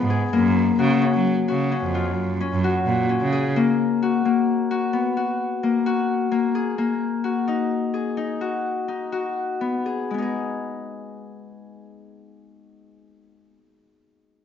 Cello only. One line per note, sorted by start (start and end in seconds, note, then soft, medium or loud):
0.00 0.30 G#2 medium
0.34 0.75 F#2 medium
0.80 1.00 C#3 medium
1.14 1.35 F#3 medium
1.49 1.80 C#3 medium
1.84 2.19 F2 medium
2.18 2.38 F#2 medium
2.53 2.73 F#2 medium
2.86 3.07 A#2 medium
3.21 3.52 C#3 medium